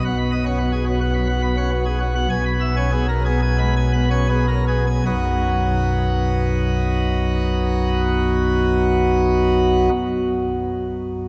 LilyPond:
<<
  \new Staff \with { instrumentName = "Pipe organ" } { \time 4/4 \key b \major \tempo 4 = 77 fis''16 b''16 dis''16 fis''16 fis'16 gis'16 fis'16 fis''16 b''16 fis''16 b''16 fis''16 fis'16 gis'16 fis'16 fis''16 | gis''16 b''16 e''16 gis''16 gis'16 ais'16 gis'16 gis''16 b''16 gis''16 b''16 gis''16 gis'16 ais'16 gis'16 gis''16 | <b,, fis, fis b dis' fis'>1~ | <b,, fis, fis b dis' fis'>1 | }
  \new Staff \with { instrumentName = "Pipe organ" } { \time 4/4 \key b \major << { b,8 b16 cis'16 b16 r16 b16 r16 fis16 r16 b16 cis'16 b16 r16 b16 r16 | b,8 b16 cis'16 b16 r16 b16 r16 gis16 r16 b16 cis'16 b16 r16 b16 r16 | r1 | r1 | } \\ { b,,1 | b,,1 | r1 | r1 | } >> }
>>